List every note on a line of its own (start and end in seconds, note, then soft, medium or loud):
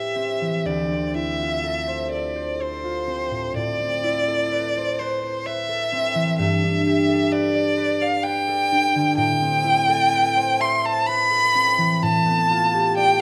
0.00 0.68 A2 soft
0.00 0.14 C4 soft
0.00 1.14 E4 soft
0.00 0.67 G4 soft
0.00 0.68 B4 soft
0.00 1.86 C5 soft
0.00 0.67 E5 medium
0.16 0.89 C4 soft
0.41 0.69 E3 soft
0.65 3.60 D2 soft
0.65 1.16 D5 medium
0.90 3.06 C4 soft
1.14 4.02 E4 soft
1.14 2.11 E5 medium
1.40 2.83 F4 soft
1.63 2.10 A4 soft
1.87 2.35 C5 soft
2.11 2.58 A4 soft
2.11 2.62 D5 medium
2.36 4.76 C5 soft
2.59 4.26 A4 soft
2.59 3.57 C5 medium
2.84 3.60 F4 soft
3.07 3.79 C4 soft
3.31 3.54 A2 soft
3.56 6.41 A2 medium
3.56 5.00 D5 medium
3.80 5.91 C4 soft
4.04 7.94 E4 soft
4.28 5.68 A4 soft
4.52 4.99 B4 soft
4.77 5.22 C5 medium
4.99 5.45 B4 medium
4.99 5.48 C5 medium
5.23 6.41 C5 soft
5.46 7.31 B4 soft
5.46 6.38 E5 medium
5.69 7.08 A4 soft
5.92 6.41 C4 soft
6.15 6.41 E3 soft
6.39 9.20 G2 medium
6.39 7.33 E5 medium
6.63 8.71 D4 soft
6.87 10.77 G4 medium
7.09 8.47 A4 soft
7.32 7.76 B4 medium
7.32 8.03 D5 medium
7.55 8.00 D5 medium
7.77 8.23 B4 medium
8.01 9.20 D5 medium
8.01 8.25 F5 medium
8.23 10.11 B4 medium
8.23 9.16 G5 loud
8.48 9.87 A4 soft
8.72 9.21 D4 medium
8.95 9.21 D3 soft
9.17 12.02 A2 medium
9.17 10.62 G5 loud
9.41 11.54 C4 soft
9.64 12.05 E4 medium
9.89 11.30 A4 medium
10.13 11.07 B4 medium
10.36 10.83 C5 medium
10.60 12.05 E5 medium
10.60 10.87 C6 medium
10.84 12.06 C5 medium
10.84 11.08 A5 medium
11.06 13.18 B4 medium
11.06 12.04 B5 loud
11.31 13.21 A4 medium
11.55 12.06 C4 soft
11.78 12.05 E3 soft
12.02 13.21 A2 medium
12.02 12.96 A5 medium
12.26 13.21 B3 soft
12.51 13.21 F4 medium
12.74 13.21 G4 medium
12.96 13.21 D5 medium
12.96 13.21 G5 medium